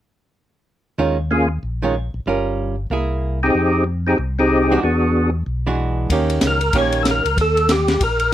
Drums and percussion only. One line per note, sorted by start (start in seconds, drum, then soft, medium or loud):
6.10 kick soft
6.10 ride medium
6.30 ride soft
6.41 snare medium
6.41 hi-hat pedal soft
6.41 ride medium
6.61 ride soft
6.73 kick soft
6.73 ride soft
6.92 ride soft
7.05 snare soft
7.05 hi-hat pedal soft
7.05 ride soft
7.26 ride soft
7.37 kick soft
7.37 ride soft
7.57 ride soft
7.69 snare medium
7.69 hi-hat pedal medium
7.69 ride medium
7.88 snare soft
7.88 ride soft
8.01 kick soft
8.01 ride medium
8.20 ride soft